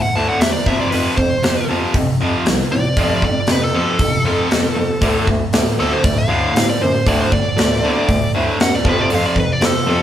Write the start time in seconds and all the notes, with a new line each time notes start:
Already playing: D2 A2
0.02 F#5
0.12 D2 A5
0.16 A2 D3
0.29 F#5
0.39 D2 E2 A2 E5, snare, open hi-hat
0.52 D5
0.66 F2 C3 F3 E5, kick
0.80 D5
0.90 F2 C3 F3 B4, open hi-hat
1.17 F2 C3 C5, kick
1.42 F2 C3, snare, open hi-hat
1.68 F2 C3 F3
1.94 F2 C3, kick, open hi-hat
2.20 F2 C3 F3
2.46 C2 F2 C3, snare, open hi-hat
2.70 F2 A2 C3 D5
2.97 F2 C3 F3, kick, open hi-hat
3.22 F2 C3 D5, kick
3.47 F2 C3, snare, open hi-hat
3.52 B4
3.64 A4
3.74 F2 C3 F3 A4
3.99 F2 C3, kick, open hi-hat
4.24 F2 C3 F3
4.50 F2 C3, snare, open hi-hat
4.75 F2 C3
5.01 D2 A2 D3 F#4 A4 D5, kick, open hi-hat
5.27 D2 A2, kick
5.52 D2 A2 F#4 A4 D5, snare, open hi-hat
5.77 D2 A2 D3 A4
5.93 C5
6.03 D2 A2 D5, kick, open hi-hat
6.18 F5
6.28 D2 A2 D3
6.54 D2 A2, snare, open hi-hat
6.69 D5
6.81 D2 F#2 A2 C5
7.06 D2 A2 D3 F#4 A4 D5, kick, open hi-hat
7.21 C5
7.32 D2 A2 D5, kick
7.56 D2 A2 F#4 A4 D5, snare, open hi-hat
7.83 D2 A2 D3
8.09 D2 A2, kick, open hi-hat
8.33 D2 A2 D3
8.59 D2 F#2 A2 F#5, snare, open hi-hat
8.75 D5
8.84 F2 C3 F3 F4 A4 C5, kick
8.89 B4
9.01 D5
9.10 F2 C3 F3 F5, open hi-hat
9.26 D5
9.36 F2 C3 B4, kick
9.52 D5
9.61 F2 C3 F4 A4 C5, snare, open hi-hat
9.65 A4
9.87 F2 C3 F3